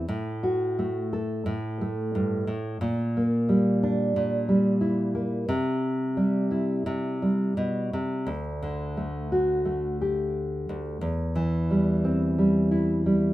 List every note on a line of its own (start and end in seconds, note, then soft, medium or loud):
0.09 1.45 A2 medium
0.43 1.11 F#4 medium
0.79 1.80 A3 medium
1.13 2.77 A4 medium
1.46 2.46 A2 medium
1.81 2.77 A3 medium
2.15 2.47 G2 medium
2.47 2.80 A2 medium
2.81 4.14 A#2 medium
3.17 5.13 A#3 medium
3.49 4.47 G3 medium
3.83 4.80 D4 medium
4.16 5.45 A#2 medium
4.48 6.16 G3 medium
4.81 5.44 E4 medium
5.15 5.44 A#3 medium
5.49 6.85 C3 medium
6.17 7.21 G3 medium
6.51 8.23 E4 medium
6.86 7.57 C3 medium
7.22 8.28 G3 medium
7.57 7.92 B2 medium
7.93 8.28 C3 medium
8.27 10.68 D2 medium
8.62 11.02 D3 medium
8.97 9.64 A3 medium
9.32 10.00 F#4 medium
9.65 10.98 A3 medium
10.01 10.99 G4 medium
10.69 11.01 D2 medium
11.01 13.34 E2 medium
11.35 13.34 E3 medium
11.70 12.38 G3 medium
12.04 13.34 C4 medium
12.38 13.06 G3 medium
12.71 13.34 E4 medium
13.06 13.34 G3 medium